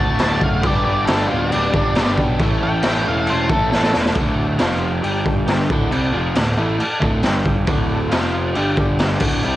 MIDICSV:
0, 0, Header, 1, 8, 480
1, 0, Start_track
1, 0, Tempo, 439560
1, 700, Time_signature, 4, 2, 24, 8
1, 10442, End_track
2, 0, Start_track
2, 0, Title_t, "Lead electric guitar"
2, 0, Program_c, 0, 29
2, 0, Note_on_c, 0, 81, 112
2, 215, Note_off_c, 0, 81, 0
2, 261, Note_on_c, 0, 81, 107
2, 472, Note_on_c, 0, 77, 110
2, 474, Note_off_c, 0, 81, 0
2, 699, Note_off_c, 0, 77, 0
2, 727, Note_on_c, 0, 74, 107
2, 913, Note_off_c, 0, 74, 0
2, 926, Note_on_c, 0, 74, 104
2, 1147, Note_on_c, 0, 69, 95
2, 1166, Note_off_c, 0, 74, 0
2, 1378, Note_on_c, 0, 65, 92
2, 1397, Note_off_c, 0, 69, 0
2, 1632, Note_off_c, 0, 65, 0
2, 1650, Note_on_c, 0, 62, 108
2, 1889, Note_off_c, 0, 62, 0
2, 1918, Note_on_c, 0, 62, 108
2, 2377, Note_off_c, 0, 62, 0
2, 2874, Note_on_c, 0, 79, 105
2, 3335, Note_off_c, 0, 79, 0
2, 3366, Note_on_c, 0, 77, 86
2, 3589, Note_off_c, 0, 77, 0
2, 3603, Note_on_c, 0, 72, 88
2, 3817, Note_off_c, 0, 72, 0
2, 3821, Note_on_c, 0, 69, 94
2, 4040, Note_off_c, 0, 69, 0
2, 4053, Note_on_c, 0, 69, 105
2, 4292, Note_off_c, 0, 69, 0
2, 10442, End_track
3, 0, Start_track
3, 0, Title_t, "Transistor combo organ"
3, 0, Program_c, 1, 18
3, 181, Note_on_c, 1, 69, 72
3, 185, Note_on_c, 1, 74, 70
3, 198, Note_on_c, 1, 81, 84
3, 554, Note_off_c, 1, 69, 0
3, 555, Note_off_c, 1, 74, 0
3, 562, Note_off_c, 1, 81, 0
3, 666, Note_on_c, 1, 67, 109
3, 668, Note_on_c, 1, 71, 99
3, 670, Note_on_c, 1, 74, 115
3, 1036, Note_off_c, 1, 67, 0
3, 1038, Note_off_c, 1, 71, 0
3, 1038, Note_off_c, 1, 74, 0
3, 1177, Note_on_c, 1, 67, 74
3, 1191, Note_on_c, 1, 74, 88
3, 1195, Note_on_c, 1, 71, 72
3, 1532, Note_off_c, 1, 67, 0
3, 1539, Note_off_c, 1, 74, 0
3, 1541, Note_off_c, 1, 71, 0
3, 1608, Note_on_c, 1, 67, 72
3, 1626, Note_on_c, 1, 74, 85
3, 1635, Note_on_c, 1, 71, 78
3, 1988, Note_off_c, 1, 67, 0
3, 1997, Note_off_c, 1, 74, 0
3, 2002, Note_off_c, 1, 71, 0
3, 2123, Note_on_c, 1, 71, 66
3, 2130, Note_on_c, 1, 67, 73
3, 2148, Note_on_c, 1, 73, 83
3, 2486, Note_off_c, 1, 71, 0
3, 2489, Note_off_c, 1, 67, 0
3, 2498, Note_off_c, 1, 73, 0
3, 2607, Note_on_c, 1, 69, 115
3, 2616, Note_on_c, 1, 64, 120
3, 2629, Note_on_c, 1, 73, 127
3, 2968, Note_off_c, 1, 69, 0
3, 2973, Note_off_c, 1, 64, 0
3, 2979, Note_off_c, 1, 73, 0
3, 3126, Note_on_c, 1, 69, 67
3, 3129, Note_on_c, 1, 64, 76
3, 3142, Note_on_c, 1, 73, 84
3, 3468, Note_off_c, 1, 69, 0
3, 3470, Note_off_c, 1, 64, 0
3, 3476, Note_off_c, 1, 73, 0
3, 3600, Note_on_c, 1, 64, 78
3, 3614, Note_on_c, 1, 69, 74
3, 3622, Note_on_c, 1, 73, 82
3, 3946, Note_off_c, 1, 64, 0
3, 3952, Note_off_c, 1, 69, 0
3, 3957, Note_off_c, 1, 73, 0
3, 4055, Note_on_c, 1, 64, 70
3, 4056, Note_on_c, 1, 71, 81
3, 4060, Note_on_c, 1, 69, 73
3, 4413, Note_off_c, 1, 64, 0
3, 4414, Note_off_c, 1, 71, 0
3, 4416, Note_off_c, 1, 69, 0
3, 4510, Note_on_c, 1, 69, 89
3, 4512, Note_on_c, 1, 66, 92
3, 4520, Note_on_c, 1, 74, 108
3, 4881, Note_off_c, 1, 69, 0
3, 4882, Note_off_c, 1, 66, 0
3, 4886, Note_off_c, 1, 74, 0
3, 5014, Note_on_c, 1, 65, 82
3, 5027, Note_on_c, 1, 72, 84
3, 5038, Note_on_c, 1, 77, 99
3, 5373, Note_off_c, 1, 65, 0
3, 5380, Note_off_c, 1, 72, 0
3, 5385, Note_off_c, 1, 77, 0
3, 5483, Note_on_c, 1, 67, 93
3, 5494, Note_on_c, 1, 74, 88
3, 5502, Note_on_c, 1, 79, 101
3, 5848, Note_off_c, 1, 67, 0
3, 5853, Note_off_c, 1, 74, 0
3, 5857, Note_off_c, 1, 79, 0
3, 5956, Note_on_c, 1, 67, 93
3, 5966, Note_on_c, 1, 74, 75
3, 5967, Note_on_c, 1, 79, 96
3, 6171, Note_on_c, 1, 69, 98
3, 6184, Note_off_c, 1, 74, 0
3, 6197, Note_on_c, 1, 74, 85
3, 6207, Note_on_c, 1, 78, 104
3, 6212, Note_off_c, 1, 67, 0
3, 6217, Note_off_c, 1, 79, 0
3, 6775, Note_off_c, 1, 69, 0
3, 6788, Note_off_c, 1, 74, 0
3, 6793, Note_off_c, 1, 78, 0
3, 6946, Note_on_c, 1, 74, 91
3, 6955, Note_on_c, 1, 69, 95
3, 6970, Note_on_c, 1, 78, 100
3, 7298, Note_off_c, 1, 74, 0
3, 7303, Note_off_c, 1, 69, 0
3, 7311, Note_off_c, 1, 78, 0
3, 7392, Note_on_c, 1, 69, 89
3, 7410, Note_on_c, 1, 74, 82
3, 7428, Note_on_c, 1, 81, 111
3, 7761, Note_off_c, 1, 69, 0
3, 7770, Note_off_c, 1, 74, 0
3, 7779, Note_off_c, 1, 81, 0
3, 7897, Note_on_c, 1, 67, 91
3, 7908, Note_on_c, 1, 79, 97
3, 7918, Note_on_c, 1, 74, 80
3, 8253, Note_off_c, 1, 67, 0
3, 8258, Note_off_c, 1, 79, 0
3, 8264, Note_off_c, 1, 74, 0
3, 8375, Note_on_c, 1, 69, 109
3, 8385, Note_on_c, 1, 74, 89
3, 8401, Note_on_c, 1, 78, 113
3, 8732, Note_off_c, 1, 69, 0
3, 8736, Note_off_c, 1, 74, 0
3, 8745, Note_off_c, 1, 78, 0
3, 8822, Note_on_c, 1, 72, 77
3, 8836, Note_on_c, 1, 65, 102
3, 8837, Note_on_c, 1, 77, 101
3, 9194, Note_off_c, 1, 72, 0
3, 9201, Note_off_c, 1, 65, 0
3, 9202, Note_off_c, 1, 77, 0
3, 9325, Note_on_c, 1, 74, 90
3, 9326, Note_on_c, 1, 67, 94
3, 9343, Note_on_c, 1, 79, 103
3, 9685, Note_off_c, 1, 74, 0
3, 9686, Note_off_c, 1, 67, 0
3, 9694, Note_off_c, 1, 79, 0
3, 9793, Note_on_c, 1, 67, 92
3, 9815, Note_on_c, 1, 74, 82
3, 9835, Note_on_c, 1, 78, 99
3, 10026, Note_off_c, 1, 74, 0
3, 10029, Note_on_c, 1, 69, 96
3, 10039, Note_on_c, 1, 74, 78
3, 10041, Note_off_c, 1, 78, 0
3, 10046, Note_off_c, 1, 67, 0
3, 10054, Note_on_c, 1, 78, 114
3, 10442, Note_off_c, 1, 69, 0
3, 10442, Note_off_c, 1, 74, 0
3, 10442, Note_off_c, 1, 78, 0
3, 10442, End_track
4, 0, Start_track
4, 0, Title_t, "Overdriven electric guitar"
4, 0, Program_c, 2, 29
4, 0, Note_on_c, 2, 57, 69
4, 0, Note_on_c, 2, 62, 85
4, 0, Note_on_c, 2, 66, 73
4, 14, Note_on_c, 2, 50, 64
4, 214, Note_off_c, 2, 62, 0
4, 225, Note_off_c, 2, 50, 0
4, 227, Note_on_c, 2, 45, 73
4, 234, Note_off_c, 2, 57, 0
4, 238, Note_on_c, 2, 50, 75
4, 242, Note_off_c, 2, 66, 0
4, 247, Note_on_c, 2, 57, 87
4, 255, Note_on_c, 2, 66, 91
4, 681, Note_off_c, 2, 50, 0
4, 688, Note_on_c, 2, 43, 83
4, 689, Note_off_c, 2, 45, 0
4, 694, Note_on_c, 2, 50, 99
4, 700, Note_off_c, 2, 57, 0
4, 703, Note_on_c, 2, 55, 93
4, 704, Note_off_c, 2, 66, 0
4, 709, Note_on_c, 2, 59, 91
4, 718, Note_on_c, 2, 62, 109
4, 722, Note_on_c, 2, 67, 104
4, 1169, Note_off_c, 2, 43, 0
4, 1177, Note_off_c, 2, 50, 0
4, 1182, Note_on_c, 2, 43, 95
4, 1184, Note_off_c, 2, 55, 0
4, 1190, Note_on_c, 2, 50, 95
4, 1196, Note_off_c, 2, 62, 0
4, 1197, Note_off_c, 2, 59, 0
4, 1197, Note_on_c, 2, 55, 106
4, 1200, Note_off_c, 2, 67, 0
4, 1210, Note_on_c, 2, 59, 91
4, 1210, Note_on_c, 2, 62, 106
4, 1213, Note_on_c, 2, 67, 114
4, 1400, Note_off_c, 2, 67, 0
4, 1413, Note_on_c, 2, 67, 66
4, 1417, Note_off_c, 2, 62, 0
4, 1426, Note_off_c, 2, 59, 0
4, 1430, Note_on_c, 2, 62, 72
4, 1431, Note_off_c, 2, 55, 0
4, 1440, Note_on_c, 2, 59, 72
4, 1444, Note_on_c, 2, 55, 63
4, 1663, Note_off_c, 2, 43, 0
4, 1666, Note_off_c, 2, 50, 0
4, 1879, Note_off_c, 2, 67, 0
4, 1889, Note_off_c, 2, 62, 0
4, 1892, Note_on_c, 2, 67, 77
4, 1903, Note_on_c, 2, 62, 74
4, 1907, Note_off_c, 2, 59, 0
4, 1918, Note_off_c, 2, 55, 0
4, 1920, Note_on_c, 2, 59, 67
4, 1931, Note_on_c, 2, 55, 58
4, 2132, Note_off_c, 2, 55, 0
4, 2145, Note_off_c, 2, 59, 0
4, 2145, Note_on_c, 2, 55, 80
4, 2151, Note_off_c, 2, 62, 0
4, 2158, Note_on_c, 2, 59, 88
4, 2161, Note_off_c, 2, 67, 0
4, 2164, Note_on_c, 2, 62, 93
4, 2174, Note_on_c, 2, 67, 93
4, 2610, Note_off_c, 2, 55, 0
4, 2617, Note_off_c, 2, 59, 0
4, 2620, Note_off_c, 2, 62, 0
4, 2621, Note_on_c, 2, 45, 96
4, 2625, Note_off_c, 2, 67, 0
4, 2627, Note_on_c, 2, 52, 96
4, 2642, Note_on_c, 2, 57, 92
4, 2650, Note_on_c, 2, 61, 95
4, 2650, Note_on_c, 2, 64, 93
4, 2657, Note_on_c, 2, 69, 97
4, 3094, Note_off_c, 2, 45, 0
4, 3107, Note_on_c, 2, 45, 91
4, 3116, Note_off_c, 2, 52, 0
4, 3117, Note_off_c, 2, 57, 0
4, 3122, Note_off_c, 2, 61, 0
4, 3127, Note_off_c, 2, 64, 0
4, 3129, Note_on_c, 2, 52, 97
4, 3130, Note_on_c, 2, 57, 102
4, 3135, Note_on_c, 2, 61, 97
4, 3140, Note_off_c, 2, 69, 0
4, 3141, Note_on_c, 2, 64, 102
4, 3153, Note_on_c, 2, 69, 108
4, 3355, Note_off_c, 2, 69, 0
4, 3364, Note_off_c, 2, 64, 0
4, 3368, Note_on_c, 2, 69, 73
4, 3377, Note_on_c, 2, 64, 64
4, 3380, Note_off_c, 2, 61, 0
4, 3389, Note_off_c, 2, 57, 0
4, 3393, Note_on_c, 2, 61, 61
4, 3402, Note_on_c, 2, 57, 64
4, 3586, Note_off_c, 2, 45, 0
4, 3597, Note_off_c, 2, 52, 0
4, 3841, Note_off_c, 2, 69, 0
4, 3855, Note_off_c, 2, 64, 0
4, 3855, Note_on_c, 2, 69, 86
4, 3868, Note_on_c, 2, 64, 73
4, 3870, Note_off_c, 2, 61, 0
4, 3872, Note_off_c, 2, 57, 0
4, 3883, Note_on_c, 2, 61, 67
4, 3886, Note_on_c, 2, 57, 64
4, 4071, Note_off_c, 2, 57, 0
4, 4080, Note_off_c, 2, 61, 0
4, 4084, Note_on_c, 2, 57, 86
4, 4093, Note_on_c, 2, 61, 82
4, 4094, Note_off_c, 2, 64, 0
4, 4107, Note_off_c, 2, 69, 0
4, 4107, Note_on_c, 2, 64, 87
4, 4120, Note_on_c, 2, 69, 89
4, 4541, Note_off_c, 2, 57, 0
4, 4545, Note_off_c, 2, 61, 0
4, 4553, Note_off_c, 2, 64, 0
4, 4559, Note_off_c, 2, 69, 0
4, 4574, Note_on_c, 2, 38, 90
4, 4585, Note_on_c, 2, 45, 91
4, 4588, Note_on_c, 2, 50, 100
4, 5023, Note_off_c, 2, 38, 0
4, 5027, Note_on_c, 2, 41, 89
4, 5029, Note_off_c, 2, 45, 0
4, 5034, Note_on_c, 2, 48, 92
4, 5036, Note_off_c, 2, 50, 0
4, 5040, Note_on_c, 2, 53, 102
4, 5500, Note_off_c, 2, 41, 0
4, 5500, Note_on_c, 2, 43, 91
4, 5508, Note_off_c, 2, 48, 0
4, 5508, Note_on_c, 2, 50, 96
4, 5515, Note_off_c, 2, 53, 0
4, 5515, Note_on_c, 2, 55, 100
4, 6217, Note_off_c, 2, 43, 0
4, 6221, Note_off_c, 2, 50, 0
4, 6224, Note_off_c, 2, 55, 0
4, 6235, Note_on_c, 2, 38, 90
4, 6242, Note_on_c, 2, 45, 86
4, 6250, Note_on_c, 2, 50, 104
4, 6449, Note_off_c, 2, 38, 0
4, 6454, Note_on_c, 2, 48, 86
4, 6460, Note_off_c, 2, 45, 0
4, 6464, Note_on_c, 2, 55, 90
4, 6471, Note_off_c, 2, 50, 0
4, 6476, Note_on_c, 2, 60, 114
4, 6675, Note_off_c, 2, 48, 0
4, 6683, Note_on_c, 2, 41, 90
4, 6684, Note_off_c, 2, 55, 0
4, 6688, Note_on_c, 2, 48, 86
4, 6693, Note_off_c, 2, 60, 0
4, 6697, Note_on_c, 2, 53, 109
4, 6928, Note_off_c, 2, 41, 0
4, 6930, Note_off_c, 2, 48, 0
4, 6935, Note_off_c, 2, 53, 0
4, 6950, Note_on_c, 2, 45, 69
4, 6957, Note_on_c, 2, 38, 69
4, 7140, Note_off_c, 2, 45, 0
4, 7144, Note_off_c, 2, 38, 0
4, 7180, Note_on_c, 2, 45, 91
4, 7193, Note_on_c, 2, 52, 97
4, 7198, Note_on_c, 2, 57, 85
4, 7416, Note_off_c, 2, 45, 0
4, 7423, Note_off_c, 2, 52, 0
4, 7425, Note_off_c, 2, 57, 0
4, 7646, Note_on_c, 2, 38, 97
4, 7660, Note_on_c, 2, 45, 98
4, 7665, Note_on_c, 2, 50, 104
4, 7887, Note_off_c, 2, 50, 0
4, 7888, Note_off_c, 2, 38, 0
4, 7896, Note_off_c, 2, 45, 0
4, 7897, Note_on_c, 2, 43, 91
4, 7900, Note_on_c, 2, 50, 104
4, 7908, Note_on_c, 2, 55, 103
4, 8369, Note_off_c, 2, 43, 0
4, 8372, Note_off_c, 2, 50, 0
4, 8373, Note_on_c, 2, 38, 86
4, 8377, Note_on_c, 2, 45, 99
4, 8379, Note_off_c, 2, 55, 0
4, 8385, Note_on_c, 2, 50, 105
4, 8850, Note_off_c, 2, 38, 0
4, 8853, Note_off_c, 2, 45, 0
4, 8856, Note_off_c, 2, 50, 0
4, 8859, Note_on_c, 2, 41, 95
4, 8863, Note_on_c, 2, 48, 82
4, 8874, Note_on_c, 2, 53, 108
4, 9332, Note_off_c, 2, 41, 0
4, 9335, Note_off_c, 2, 48, 0
4, 9340, Note_off_c, 2, 53, 0
4, 9346, Note_on_c, 2, 43, 101
4, 9356, Note_on_c, 2, 50, 98
4, 9359, Note_on_c, 2, 55, 101
4, 10054, Note_off_c, 2, 43, 0
4, 10059, Note_off_c, 2, 50, 0
4, 10061, Note_off_c, 2, 55, 0
4, 10063, Note_on_c, 2, 38, 89
4, 10069, Note_on_c, 2, 45, 85
4, 10073, Note_on_c, 2, 50, 111
4, 10293, Note_off_c, 2, 38, 0
4, 10296, Note_off_c, 2, 45, 0
4, 10298, Note_off_c, 2, 50, 0
4, 10304, Note_on_c, 2, 48, 97
4, 10317, Note_on_c, 2, 60, 99
4, 10319, Note_on_c, 2, 55, 97
4, 10442, Note_off_c, 2, 48, 0
4, 10442, Note_off_c, 2, 55, 0
4, 10442, Note_off_c, 2, 60, 0
4, 10442, End_track
5, 0, Start_track
5, 0, Title_t, "Picked electric bass"
5, 0, Program_c, 3, 34
5, 0, Note_on_c, 3, 26, 89
5, 193, Note_off_c, 3, 26, 0
5, 230, Note_on_c, 3, 26, 87
5, 439, Note_off_c, 3, 26, 0
5, 454, Note_on_c, 3, 30, 90
5, 670, Note_off_c, 3, 30, 0
5, 698, Note_on_c, 3, 31, 94
5, 913, Note_off_c, 3, 31, 0
5, 945, Note_on_c, 3, 31, 100
5, 1157, Note_off_c, 3, 31, 0
5, 1182, Note_on_c, 3, 31, 99
5, 1396, Note_off_c, 3, 31, 0
5, 1441, Note_on_c, 3, 26, 95
5, 1646, Note_off_c, 3, 26, 0
5, 1683, Note_on_c, 3, 26, 100
5, 1887, Note_off_c, 3, 26, 0
5, 1901, Note_on_c, 3, 31, 80
5, 2115, Note_off_c, 3, 31, 0
5, 2158, Note_on_c, 3, 31, 98
5, 2365, Note_off_c, 3, 31, 0
5, 2377, Note_on_c, 3, 35, 87
5, 2594, Note_off_c, 3, 35, 0
5, 2628, Note_on_c, 3, 33, 95
5, 2840, Note_off_c, 3, 33, 0
5, 2874, Note_on_c, 3, 33, 93
5, 3083, Note_off_c, 3, 33, 0
5, 3108, Note_on_c, 3, 33, 107
5, 3320, Note_off_c, 3, 33, 0
5, 3360, Note_on_c, 3, 28, 94
5, 3567, Note_off_c, 3, 28, 0
5, 3613, Note_on_c, 3, 28, 90
5, 3814, Note_off_c, 3, 28, 0
5, 3823, Note_on_c, 3, 33, 81
5, 4038, Note_off_c, 3, 33, 0
5, 4085, Note_on_c, 3, 33, 87
5, 4290, Note_off_c, 3, 33, 0
5, 4324, Note_on_c, 3, 28, 90
5, 4530, Note_off_c, 3, 28, 0
5, 4541, Note_on_c, 3, 26, 93
5, 4990, Note_off_c, 3, 26, 0
5, 5024, Note_on_c, 3, 29, 99
5, 5472, Note_off_c, 3, 29, 0
5, 5507, Note_on_c, 3, 31, 88
5, 6183, Note_off_c, 3, 31, 0
5, 6237, Note_on_c, 3, 26, 89
5, 6445, Note_off_c, 3, 26, 0
5, 6452, Note_on_c, 3, 36, 98
5, 6682, Note_off_c, 3, 36, 0
5, 6714, Note_on_c, 3, 29, 100
5, 6934, Note_off_c, 3, 29, 0
5, 6942, Note_on_c, 3, 26, 89
5, 7168, Note_off_c, 3, 26, 0
5, 7180, Note_on_c, 3, 33, 94
5, 7406, Note_off_c, 3, 33, 0
5, 7675, Note_on_c, 3, 26, 103
5, 7894, Note_off_c, 3, 26, 0
5, 7933, Note_on_c, 3, 31, 92
5, 8366, Note_off_c, 3, 31, 0
5, 8382, Note_on_c, 3, 26, 100
5, 8828, Note_off_c, 3, 26, 0
5, 8869, Note_on_c, 3, 29, 106
5, 9311, Note_off_c, 3, 29, 0
5, 9361, Note_on_c, 3, 31, 90
5, 10025, Note_off_c, 3, 31, 0
5, 10052, Note_on_c, 3, 26, 93
5, 10277, Note_off_c, 3, 26, 0
5, 10313, Note_on_c, 3, 36, 91
5, 10442, Note_off_c, 3, 36, 0
5, 10442, End_track
6, 0, Start_track
6, 0, Title_t, "Muted overdriven electric guitar strokes"
6, 7427, Note_on_c, 9, 29, 64
6, 7536, Note_off_c, 9, 29, 0
6, 10442, End_track
7, 0, Start_track
7, 0, Title_t, "Muted picked electric bass strokes"
7, 7436, Note_on_c, 9, 29, 40
7, 7545, Note_off_c, 9, 29, 0
7, 10442, End_track
8, 0, Start_track
8, 0, Title_t, "Drums"
8, 205, Note_on_c, 9, 49, 69
8, 216, Note_on_c, 9, 38, 99
8, 314, Note_off_c, 9, 49, 0
8, 325, Note_off_c, 9, 38, 0
8, 452, Note_on_c, 9, 36, 93
8, 561, Note_off_c, 9, 36, 0
8, 690, Note_on_c, 9, 49, 66
8, 693, Note_on_c, 9, 36, 119
8, 799, Note_off_c, 9, 49, 0
8, 802, Note_off_c, 9, 36, 0
8, 1170, Note_on_c, 9, 49, 71
8, 1181, Note_on_c, 9, 38, 118
8, 1279, Note_off_c, 9, 49, 0
8, 1290, Note_off_c, 9, 38, 0
8, 1658, Note_on_c, 9, 49, 66
8, 1768, Note_off_c, 9, 49, 0
8, 1896, Note_on_c, 9, 36, 100
8, 2006, Note_off_c, 9, 36, 0
8, 2131, Note_on_c, 9, 49, 63
8, 2142, Note_on_c, 9, 38, 106
8, 2240, Note_off_c, 9, 49, 0
8, 2251, Note_off_c, 9, 38, 0
8, 2375, Note_on_c, 9, 36, 89
8, 2484, Note_off_c, 9, 36, 0
8, 2612, Note_on_c, 9, 49, 66
8, 2616, Note_on_c, 9, 36, 109
8, 2721, Note_off_c, 9, 49, 0
8, 2725, Note_off_c, 9, 36, 0
8, 3085, Note_on_c, 9, 49, 77
8, 3096, Note_on_c, 9, 38, 112
8, 3194, Note_off_c, 9, 49, 0
8, 3205, Note_off_c, 9, 38, 0
8, 3568, Note_on_c, 9, 49, 63
8, 3677, Note_off_c, 9, 49, 0
8, 3817, Note_on_c, 9, 36, 100
8, 3926, Note_off_c, 9, 36, 0
8, 4063, Note_on_c, 9, 38, 67
8, 4173, Note_off_c, 9, 38, 0
8, 4185, Note_on_c, 9, 38, 70
8, 4294, Note_off_c, 9, 38, 0
8, 4297, Note_on_c, 9, 38, 98
8, 4406, Note_off_c, 9, 38, 0
8, 4428, Note_on_c, 9, 38, 96
8, 4531, Note_on_c, 9, 49, 62
8, 4537, Note_off_c, 9, 38, 0
8, 4537, Note_on_c, 9, 36, 120
8, 4641, Note_off_c, 9, 49, 0
8, 4646, Note_off_c, 9, 36, 0
8, 5009, Note_on_c, 9, 49, 65
8, 5020, Note_on_c, 9, 38, 118
8, 5118, Note_off_c, 9, 49, 0
8, 5129, Note_off_c, 9, 38, 0
8, 5500, Note_on_c, 9, 49, 58
8, 5610, Note_off_c, 9, 49, 0
8, 5740, Note_on_c, 9, 36, 97
8, 5850, Note_off_c, 9, 36, 0
8, 5978, Note_on_c, 9, 49, 56
8, 5989, Note_on_c, 9, 38, 103
8, 6087, Note_off_c, 9, 49, 0
8, 6098, Note_off_c, 9, 38, 0
8, 6224, Note_on_c, 9, 36, 114
8, 6333, Note_off_c, 9, 36, 0
8, 6463, Note_on_c, 9, 49, 67
8, 6573, Note_off_c, 9, 49, 0
8, 6938, Note_on_c, 9, 49, 75
8, 6949, Note_on_c, 9, 38, 122
8, 7047, Note_off_c, 9, 49, 0
8, 7058, Note_off_c, 9, 38, 0
8, 7425, Note_on_c, 9, 49, 72
8, 7534, Note_off_c, 9, 49, 0
8, 7665, Note_on_c, 9, 36, 99
8, 7774, Note_off_c, 9, 36, 0
8, 7892, Note_on_c, 9, 49, 57
8, 7903, Note_on_c, 9, 38, 99
8, 8001, Note_off_c, 9, 49, 0
8, 8012, Note_off_c, 9, 38, 0
8, 8141, Note_on_c, 9, 36, 83
8, 8250, Note_off_c, 9, 36, 0
8, 8375, Note_on_c, 9, 49, 64
8, 8380, Note_on_c, 9, 36, 127
8, 8484, Note_off_c, 9, 49, 0
8, 8489, Note_off_c, 9, 36, 0
8, 8860, Note_on_c, 9, 49, 66
8, 8871, Note_on_c, 9, 38, 120
8, 8969, Note_off_c, 9, 49, 0
8, 8980, Note_off_c, 9, 38, 0
8, 9337, Note_on_c, 9, 49, 57
8, 9447, Note_off_c, 9, 49, 0
8, 9578, Note_on_c, 9, 36, 97
8, 9688, Note_off_c, 9, 36, 0
8, 9814, Note_on_c, 9, 49, 57
8, 9825, Note_on_c, 9, 38, 107
8, 9924, Note_off_c, 9, 49, 0
8, 9935, Note_off_c, 9, 38, 0
8, 10044, Note_on_c, 9, 49, 107
8, 10054, Note_on_c, 9, 36, 109
8, 10154, Note_off_c, 9, 49, 0
8, 10163, Note_off_c, 9, 36, 0
8, 10294, Note_on_c, 9, 49, 67
8, 10403, Note_off_c, 9, 49, 0
8, 10442, End_track
0, 0, End_of_file